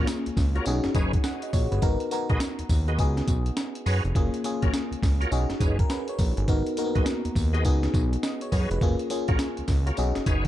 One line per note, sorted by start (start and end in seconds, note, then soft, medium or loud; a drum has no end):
0.00 0.53 A#3 medium
0.00 0.54 C#4 medium
0.00 0.54 F4 medium
0.00 0.54 G#4 loud
0.07 snare loud
0.07 closed hi-hat loud
0.07 tambourine loud
0.26 0.31 C#2 soft
0.26 closed hi-hat soft
0.37 0.60 C#2 medium
0.37 kick loud
0.37 snare medium
0.37 open hi-hat medium
0.37 tambourine medium
0.55 0.65 F4 medium
0.55 0.65 F#4 medium
0.55 0.65 A#4 medium
0.55 0.66 C#5 medium
0.55 closed hi-hat medium
0.66 0.81 B1 loud
0.66 1.61 C#4 medium
0.66 1.61 D#4 medium
0.66 1.61 F#4 medium
0.66 1.61 G#4 loud
0.66 closed hi-hat medium
0.66 tambourine medium
0.84 0.89 F#1 medium
0.84 snare medium
0.84 closed hi-hat soft
0.95 1.18 F#1 medium
0.95 1.12 D#4 medium
0.95 1.12 G#4 medium
0.95 1.12 B4 medium
0.95 1.12 C#5 medium
0.95 kick loud
0.95 closed hi-hat medium
0.95 tambourine medium
1.13 kick medium
1.13 closed hi-hat medium
1.24 1.42 F#5 medium
1.24 snare medium
1.24 closed hi-hat medium
1.24 tambourine medium
1.42 1.53 D#5 medium
1.42 closed hi-hat medium
1.53 1.68 A#1 medium
1.53 1.71 C#5 medium
1.53 kick medium
1.53 open hi-hat medium
1.53 tambourine medium
1.71 1.80 G1 loud
1.71 1.99 B4 medium
1.71 closed hi-hat medium
1.82 1.97 G#1 loud
1.82 2.03 B3 medium
1.82 2.03 D#4 medium
1.82 2.03 F#4 medium
1.82 2.03 A#4 medium
1.82 kick loud
1.82 closed hi-hat medium
2.00 closed hi-hat medium
2.11 2.86 B3 medium
2.11 2.87 D#4 medium
2.11 2.87 F#4 medium
2.11 2.87 A#4 medium
2.11 closed hi-hat medium
2.11 tambourine medium
2.29 2.38 B1 medium
2.29 2.40 F#4 medium
2.29 2.40 G#4 medium
2.29 2.40 B4 medium
2.29 2.40 D#5 medium
2.29 kick medium
2.29 closed hi-hat medium
2.40 snare loud
2.40 closed hi-hat loud
2.40 tambourine loud
2.59 2.63 D#2 soft
2.59 closed hi-hat medium
2.69 3.00 D#2 loud
2.69 kick medium
2.69 open hi-hat medium
2.69 tambourine medium
2.88 2.98 F#4 medium
2.88 2.98 G#4 medium
2.88 2.98 B4 medium
2.88 2.98 D#5 medium
2.88 closed hi-hat soft
2.98 3.22 C#2 loud
2.98 3.93 B3 loud
2.98 3.94 D#4 medium
2.98 3.94 F#4 medium
2.98 3.94 G#4 loud
2.98 kick medium
2.98 closed hi-hat medium
2.98 tambourine medium
3.17 snare medium
3.17 closed hi-hat soft
3.28 3.51 B1 loud
3.28 kick medium
3.28 closed hi-hat medium
3.28 tambourine medium
3.46 closed hi-hat medium
3.57 snare loud
3.57 closed hi-hat medium
3.57 tambourine medium
3.75 closed hi-hat medium
3.86 4.01 F#2 medium
3.86 4.03 F#4 medium
3.86 4.03 G#4 medium
3.86 4.03 B4 medium
3.86 4.04 C#5 medium
3.86 open hi-hat medium
3.86 tambourine medium
4.04 4.13 F1 medium
4.04 closed hi-hat medium
4.15 4.30 F#1 loud
4.15 4.36 A#3 medium
4.15 4.36 C#4 medium
4.15 4.36 F4 medium
4.15 4.37 G#4 loud
4.15 kick loud
4.15 closed hi-hat medium
4.34 closed hi-hat medium
4.44 5.19 A#3 medium
4.44 5.19 C#4 medium
4.44 5.20 F4 medium
4.44 5.20 G#4 loud
4.44 closed hi-hat medium
4.44 tambourine medium
4.62 4.71 A#1 medium
4.62 4.73 F4 medium
4.62 4.73 F#4 medium
4.62 4.73 A#4 medium
4.62 4.73 C#5 loud
4.62 kick medium
4.62 closed hi-hat medium
4.74 snare loud
4.74 closed hi-hat loud
4.74 tambourine loud
4.91 4.96 C#2 soft
4.91 closed hi-hat medium
5.03 5.26 C#2 medium
5.03 kick medium
5.03 snare medium
5.03 open hi-hat medium
5.03 tambourine medium
5.20 5.31 F4 medium
5.20 5.31 F#4 medium
5.20 5.31 A#4 medium
5.20 5.31 C#5 medium
5.20 closed hi-hat medium
5.31 5.46 B1 loud
5.31 6.26 C#4 medium
5.31 6.26 D#4 medium
5.31 6.27 F#4 medium
5.31 5.61 G#4 loud
5.31 closed hi-hat medium
5.31 tambourine medium
5.50 5.54 F#1 soft
5.50 snare medium
5.50 closed hi-hat soft
5.60 5.84 F#1 medium
5.60 5.78 D#4 medium
5.60 5.78 G#4 medium
5.60 5.78 B4 medium
5.60 5.78 C#5 medium
5.60 kick loud
5.60 closed hi-hat medium
5.60 tambourine medium
5.79 5.90 A#4 medium
5.79 kick medium
5.79 closed hi-hat medium
5.90 6.08 B4 medium
5.90 snare loud
5.90 closed hi-hat medium
5.90 tambourine medium
6.08 6.37 C#5 medium
6.08 closed hi-hat medium
6.19 6.34 A#1 medium
6.19 kick medium
6.19 open hi-hat medium
6.19 tambourine medium
6.37 6.46 G1 loud
6.37 6.65 G#4 medium
6.37 closed hi-hat medium
6.48 6.63 G#1 loud
6.48 6.69 B3 medium
6.48 6.69 D#4 medium
6.48 6.70 F#4 medium
6.48 6.70 A#4 medium
6.48 kick loud
6.48 closed hi-hat medium
6.66 closed hi-hat medium
6.77 6.86 A#3 medium
6.77 7.53 D#4 medium
6.77 7.53 F#4 medium
6.77 7.53 A#4 loud
6.77 closed hi-hat medium
6.77 tambourine medium
6.84 7.56 B3 medium
6.95 7.04 B1 medium
6.95 7.06 F#4 medium
6.95 7.06 G#4 medium
6.95 7.06 B4 medium
6.95 7.06 D#5 medium
6.95 kick medium
6.95 closed hi-hat medium
7.06 snare loud
7.06 closed hi-hat loud
7.06 tambourine loud
7.25 7.29 D#2 soft
7.25 closed hi-hat medium
7.35 7.66 D#2 loud
7.35 kick medium
7.35 open hi-hat medium
7.35 tambourine medium
7.53 7.64 F#4 medium
7.53 7.64 G#4 medium
7.53 7.64 B4 medium
7.53 7.64 D#5 medium
7.53 closed hi-hat medium
7.65 7.88 C#2 loud
7.65 8.59 B3 medium
7.65 8.60 D#4 medium
7.65 8.60 F#4 medium
7.65 8.60 G#4 loud
7.65 kick medium
7.65 closed hi-hat medium
7.65 tambourine medium
7.83 snare medium
7.83 closed hi-hat soft
7.94 8.17 B1 loud
7.94 kick loud
7.94 closed hi-hat medium
7.94 tambourine medium
8.13 closed hi-hat medium
8.23 8.40 D#5 medium
8.23 snare loud
8.23 closed hi-hat medium
8.23 tambourine medium
8.41 8.69 C#5 medium
8.41 closed hi-hat medium
8.52 8.67 F#2 medium
8.52 8.69 F#4 medium
8.52 8.69 G#4 medium
8.52 8.69 B4 medium
8.52 8.69 C#5 medium
8.52 kick medium
8.52 open hi-hat medium
8.52 tambourine medium
8.70 8.79 F1 loud
8.70 8.99 B4 medium
8.70 closed hi-hat medium
8.81 8.96 F#1 loud
8.81 9.02 A#3 medium
8.81 9.03 C#4 medium
8.81 9.03 F4 medium
8.81 9.03 G#4 loud
8.81 kick loud
8.81 closed hi-hat medium
8.99 closed hi-hat medium
9.10 9.85 A#3 medium
9.10 9.85 C#4 medium
9.10 9.86 F4 medium
9.10 9.86 G#4 loud
9.10 closed hi-hat medium
9.10 tambourine medium
9.28 9.37 A#1 medium
9.28 9.39 F4 medium
9.28 9.39 F#4 medium
9.28 9.39 A#4 medium
9.28 9.39 C#5 medium
9.28 kick medium
9.28 closed hi-hat medium
9.39 snare loud
9.39 closed hi-hat loud
9.39 tambourine loud
9.57 9.63 C#2 soft
9.57 closed hi-hat soft
9.68 9.91 C#2 medium
9.68 kick medium
9.68 snare medium
9.68 open hi-hat medium
9.68 tambourine medium
9.86 9.97 F4 medium
9.86 9.97 F#4 medium
9.86 9.97 A#4 medium
9.86 9.97 C#5 medium
9.86 closed hi-hat medium
9.97 10.13 B1 loud
9.97 10.48 C#4 medium
9.97 10.48 D#4 medium
9.97 10.48 F#4 medium
9.97 10.48 G#4 loud
9.97 closed hi-hat medium
9.97 tambourine medium
10.15 10.21 F#1 medium
10.15 snare medium
10.15 closed hi-hat soft
10.26 10.48 F#1 loud
10.26 10.44 D#4 medium
10.26 10.44 G#4 medium
10.26 10.44 B4 medium
10.26 10.44 C#5 medium
10.26 kick loud
10.26 closed hi-hat medium
10.26 tambourine medium
10.45 closed hi-hat medium